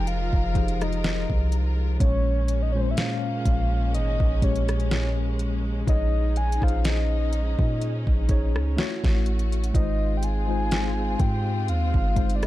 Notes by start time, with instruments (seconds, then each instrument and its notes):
Already playing: 808-style bass F1, tine electric piano F3 D#4 F4 G4 G#4 A#4 C5, string section F3 G#3 D#4 F4 A#4
0.07 soft synth lead F5, closed hi-hat
0.33 808-style bass F1, kick
0.54 tine electric piano F3 D#4 G4 G#4 C5, kick, closed hi-hat
0.68 closed hi-hat
0.81 soft synth lead D#5, cross-stick, closed hi-hat
0.93 closed hi-hat
1.04 snare
1.30 808-style bass C2, kick
1.52 closed hi-hat
1.99 808-style bass A#1, tine electric piano A#2 G#3 C#4 C#5, string section G#3 A#3 C#4, soft synth lead C#5, kick, closed hi-hat
2.48 closed hi-hat
2.62 soft synth lead D#5
2.72 tine electric piano A#2 G#3 C#4, soft synth lead C#5
2.77 tine electric piano C5
2.81 soft synth lead C5
2.89 soft synth lead C#5 E5
2.97 soft synth lead F5, snare, closed hi-hat
3.46 808-style bass A#1, kick, closed hi-hat
3.94 808-style bass G#1, soft synth lead D#5, closed hi-hat
4.20 808-style bass A#1, kick
4.42 tine electric piano A#2 G#3 C#4 G4, soft synth lead C#5, kick, closed hi-hat
4.56 closed hi-hat
4.68 cross-stick, closed hi-hat
4.80 closed hi-hat
4.91 snare
5.39 closed hi-hat
5.87 808-style bass A#1, string section C#4 D#4, tine electric piano D#4 G#4 C#5, soft synth lead D#5, kick, closed hi-hat
6.36 soft synth lead G#5, closed hi-hat
6.52 closed hi-hat
6.61 808-style bass A#1, tine electric piano D#4 G#4 C5, soft synth lead F5, kick, cross-stick
6.68 closed hi-hat
6.85 soft synth lead D#5, snare, closed hi-hat
7.33 closed hi-hat
7.59 808-style bass A#2, kick
7.82 closed hi-hat
8.07 808-style bass A#1, kick
8.28 tine electric piano D#4 G#4 C#5, kick, closed hi-hat
8.56 808-style bass C#2, cross-stick
8.77 tine electric piano A3 E4 F#4 C#5, string section A3 F#4, snare
9.04 808-style bass A1, kick, snare
9.26 closed hi-hat, open hi-hat
9.39 closed hi-hat
9.52 closed hi-hat
9.64 closed hi-hat
9.73 808-style bass G#1, tine electric piano G#3 D#4 F4 C5, string section G#3 C4 F4, soft synth lead D#5, kick, closed hi-hat
10.17 soft synth lead G5
10.23 soft synth lead G#5, closed hi-hat
10.48 tine electric piano G#3 D#4 F4 C5
10.71 snare, closed hi-hat
11.20 808-style bass G#2, soft synth lead G5, kick, closed hi-hat
11.68 808-style bass D#2, soft synth lead F5, closed hi-hat
11.94 808-style bass G1, kick
12.15 tine electric piano G#3 D#4 F4 C5, kick, closed hi-hat
12.30 closed hi-hat
12.36 soft synth lead D5
12.43 cross-stick, closed hi-hat